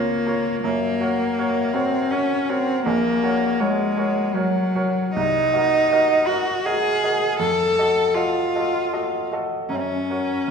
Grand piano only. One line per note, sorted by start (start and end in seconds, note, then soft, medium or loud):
0.00 0.65 C#2 medium
0.00 0.27 F4 soft
0.00 0.27 A#4 soft
0.00 0.28 C#5 soft
0.27 0.60 F4 soft
0.27 0.60 A#4 soft
0.27 0.60 C#5 soft
0.64 0.99 F#2 medium
1.00 1.33 F#4 soft
1.00 1.34 A#4 soft
1.00 1.33 C#5 soft
1.38 1.71 F#4 soft
1.38 1.71 A#4 soft
1.38 1.72 C#5 medium
1.74 2.08 F#4 soft
1.74 2.08 A#4 soft
1.74 2.08 C#5 soft
2.10 2.44 F#4 soft
2.10 2.44 A#4 soft
2.10 2.45 C#5 soft
2.49 2.82 F#4 soft
2.49 2.82 A#4 soft
2.49 2.83 C#5 soft
2.86 3.22 A#1 medium
3.23 3.56 F#4 soft
3.23 3.56 A#4 soft
3.23 3.56 C#5 soft
3.59 3.92 F#4 soft
3.59 3.93 A#4 soft
3.59 3.93 C#5 soft
3.97 4.31 F#4 soft
3.97 4.31 A#4 soft
3.97 4.31 C#5 soft
4.34 4.70 F#4 soft
4.34 4.71 A#4 soft
4.34 4.70 C#5 soft
4.75 5.11 F#4 soft
4.75 5.11 A#4 soft
4.75 5.11 C#5 soft
5.16 5.52 C2 medium
5.53 5.86 F#4 soft
5.53 5.87 A#4 soft
5.53 5.86 D#5 soft
5.91 6.24 F#4 soft
5.91 6.24 A#4 soft
5.91 6.25 D#5 soft
6.28 6.61 F#4 soft
6.28 6.62 A#4 soft
6.28 6.62 D#5 soft
6.66 6.99 F#4 soft
6.66 6.99 A#4 soft
6.66 6.99 D#5 soft
7.03 7.36 F#4 soft
7.03 7.37 A#4 soft
7.03 7.37 D#5 soft
7.39 7.76 F2 soft
7.78 8.12 F#4 soft
7.78 8.12 A4 soft
7.78 8.12 D#5 soft
8.15 8.49 F#4 soft
8.15 8.50 A4 soft
8.15 8.50 D#5 soft
8.55 8.88 F#4 soft
8.55 8.89 A4 soft
8.55 8.89 D#5 soft
8.93 9.27 F#4 soft
8.93 9.27 A4 soft
8.93 9.27 D#5 soft
9.32 9.66 F#4 soft
9.32 9.67 A4 soft
9.32 9.66 D#5 soft
9.70 10.07 F#2 soft
10.10 10.44 F#4 soft
10.10 10.44 A#4 soft
10.10 10.45 C#5 soft